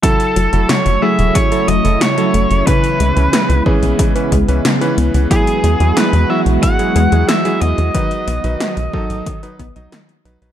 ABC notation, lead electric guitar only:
X:1
M:4/4
L:1/8
Q:1/4=91
K:F#dor
V:1 name="Lead electric guitar"
A2 c e c d c2 | B3 z4 z | G2 B e f2 e d- | d6 z2 |]